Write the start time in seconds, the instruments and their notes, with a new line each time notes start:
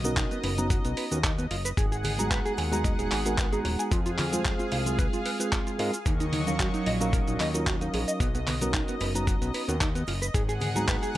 Already playing: analog synth bass B1, analog synth pad D#5
0.04 reed electric piano B3 C#4 D#4 F#4 A#4, clean electric guitar B3, closed hi-hat, high conga, cabasa, shaker
0.17 clean electric guitar D#4, kick, clap, closed hi-hat, shaker
0.31 clean electric guitar B3, closed hi-hat, shaker
0.44 analog synth bass F#1, clean electric guitar B4, open hi-hat, high bongo, cabasa
0.57 reed electric piano B3 C#4 D#4 F#4 A#5, clean electric guitar B3, closed hi-hat, high conga, cabasa, shaker
0.70 clean electric guitar F#4, kick, closed hi-hat, high conga, cabasa, shaker
0.85 analog synth bass B1, clean electric guitar B3, closed hi-hat, shaker
0.97 clean electric guitar B4, open hi-hat, cabasa
1.11 analog synth bass D#2, reed electric piano B3 C#4 D#4 F#4 A#4, clean electric guitar B3, closed hi-hat, cabasa, shaker
1.24 clean electric guitar D#4, kick, clap, closed hi-hat, shaker
1.38 clean electric guitar B3, closed hi-hat, shaker
1.51 analog synth bass F#1, clean electric guitar F4, open hi-hat, cabasa
1.65 clean electric guitar B4, closed hi-hat, cabasa, shaker
1.77 analog synth bass G#1, analog synth pad G#4 F#5, clean electric guitar G#4, kick, closed hi-hat, cabasa, shaker
1.92 clean electric guitar G#4, closed hi-hat, shaker
2.04 clean electric guitar G#4, open hi-hat, low conga, cabasa
2.18 reed electric piano G#3 B3 D#4 F#4 A#5, clean electric guitar G#4, closed hi-hat, high conga, cabasa, shaker
2.31 clean electric guitar B4, kick, clap, closed hi-hat, cabasa, shaker
2.45 clean electric guitar G#4, closed hi-hat, shaker
2.58 analog synth bass D#2, clean electric guitar G#5, open hi-hat, high bongo, cabasa
2.72 reed electric piano G#3 B3 D#4 F#4 A#5, clean electric guitar G#4, closed hi-hat, high conga, cabasa, shaker
2.84 clean electric guitar D#5, kick, closed hi-hat, high conga, cabasa, shaker
2.99 analog synth bass D#1, clean electric guitar G#4, closed hi-hat, shaker
3.11 analog synth bass G#1, clean electric guitar G#5, clap, open hi-hat, cabasa
3.25 reed electric piano G#3 B3 D#4 F#4 A#4, clean electric guitar G#4, closed hi-hat, shaker
3.38 clean electric guitar B4, kick, clap, closed hi-hat, shaker
3.52 reed electric piano G#3 B3 D#4 F#4 A#5, clean electric guitar G#4, closed hi-hat, shaker
3.65 analog synth bass D#1, clean electric guitar C#5, open hi-hat, high bongo, cabasa
3.79 clean electric guitar G#5, closed hi-hat, cabasa, shaker
3.92 analog synth bass F2, clean electric guitar F4, analog synth pad G#4 F5, kick, closed hi-hat, shaker
4.06 clean electric guitar F4, closed hi-hat, shaker
4.18 clean electric guitar F4, clap, open hi-hat, low conga, cabasa
4.32 reed electric piano G#3 C4 F4 G#4 C5, clean electric guitar F4, closed hi-hat, high conga, cabasa, shaker
4.45 clean electric guitar G#4, kick, clap, closed hi-hat, cabasa, shaker
4.59 clean electric guitar F4, closed hi-hat, shaker
4.72 analog synth bass C2, clean electric guitar F5, open hi-hat, high bongo, cabasa
4.86 reed electric piano G#3 C4 F4 G#4, clean electric guitar F4, closed hi-hat, high conga, cabasa, shaker
4.98 clean electric guitar B4, kick, closed hi-hat, high conga, cabasa, shaker
5.13 clean electric guitar F4, closed hi-hat, shaker
5.26 clean electric guitar B4, open hi-hat, cabasa
5.39 reed electric piano G#3 C4 F4 G#4, clean electric guitar B4, closed hi-hat, high bongo, cabasa, shaker
5.52 clean electric guitar F4, kick, clap, closed hi-hat, shaker
5.67 clean electric guitar F4, closed hi-hat, shaker
5.79 analog synth bass G#2, reed electric piano G#3 C4 F4 G#4 A#4, clean electric guitar F5, open hi-hat, cabasa
5.93 clean electric guitar F4, closed hi-hat, cabasa, shaker
6.06 analog synth bass D#2, analog synth pad F#3 D#5 C#6, clean electric guitar D#4, kick, closed hi-hat, cabasa, shaker
6.20 clean electric guitar D#4, closed hi-hat, shaker
6.33 clean electric guitar D#4, open hi-hat, low conga, cabasa
6.47 reed electric piano F#3 C#4 D#4 A#4 F5, clean electric guitar D#4, closed hi-hat, high conga, cabasa, shaker
6.59 clean electric guitar F#4, kick, clap, closed hi-hat, cabasa, shaker
6.74 clean electric guitar D#4, closed hi-hat, shaker
6.86 analog synth bass A#1, clean electric guitar D#5, open hi-hat, high bongo, cabasa
7.00 reed electric piano F#3 C#4 D#4 A#4 F5, clean electric guitar D#4, closed hi-hat, high conga, cabasa, shaker
7.13 clean electric guitar A#4, kick, closed hi-hat, high conga, cabasa, shaker
7.27 analog synth bass A#1, clean electric guitar D#4, closed hi-hat, shaker
7.40 analog synth bass D#2, clean electric guitar D#5, clap, open hi-hat, cabasa
7.54 reed electric piano F#3 C#4 D#4 F4 A#4, clean electric guitar D#4, closed hi-hat, cabasa, shaker
7.67 clean electric guitar F#4, kick, clap, closed hi-hat, cabasa, shaker
7.80 reed electric piano F#3 C#4 D#4 A#4 F5, clean electric guitar D#4, closed hi-hat, shaker
7.94 analog synth bass A#1, clean electric guitar G#4, open hi-hat, high bongo, cabasa
8.08 clean electric guitar D#5, closed hi-hat, cabasa, shaker
8.20 analog synth bass B1, clean electric guitar B3, kick, closed hi-hat, cabasa, shaker
8.35 clean electric guitar B3, closed hi-hat, shaker
8.47 clean electric guitar B3, clap, open hi-hat, low conga, cabasa
8.61 reed electric piano B3 C#4 D#4 F#4 A#4, clean electric guitar B3, closed hi-hat, high conga, cabasa, shaker
8.74 clean electric guitar D#4, kick, clap, closed hi-hat, cabasa, shaker
8.88 clean electric guitar B3, closed hi-hat, shaker
9.00 analog synth bass F#1, clean electric guitar B4, open hi-hat, high bongo, cabasa
9.14 reed electric piano B3 C#4 D#4 F#4 A#5, clean electric guitar B3, closed hi-hat, high conga, cabasa, shaker
9.27 clean electric guitar F#4, kick, closed hi-hat, high conga, cabasa, shaker
9.42 analog synth bass B1, clean electric guitar B3, closed hi-hat, shaker
9.54 clean electric guitar B4, open hi-hat, cabasa
9.68 analog synth bass D#2, reed electric piano B3 C#4 D#4 F#4 A#4, clean electric guitar B3, closed hi-hat, cabasa, shaker
9.81 clean electric guitar D#4, kick, clap, closed hi-hat, shaker
9.95 clean electric guitar B3, closed hi-hat, shaker
10.07 analog synth bass F#1, clean electric guitar F4, open hi-hat, cabasa
10.22 clean electric guitar B4, closed hi-hat, shaker
10.34 analog synth bass G#1, clean electric guitar G#4, analog synth pad G#4 F#5, kick, closed hi-hat, cabasa, shaker
10.49 clean electric guitar G#4, closed hi-hat, shaker
10.61 clean electric guitar G#4, open hi-hat, low conga, cabasa
10.75 reed electric piano G#3 B3 D#4 F#4 A#5, clean electric guitar G#4, closed hi-hat, high conga, cabasa, shaker
10.88 clean electric guitar B4, kick, clap, closed hi-hat, cabasa, shaker
11.02 clean electric guitar G#4, closed hi-hat, shaker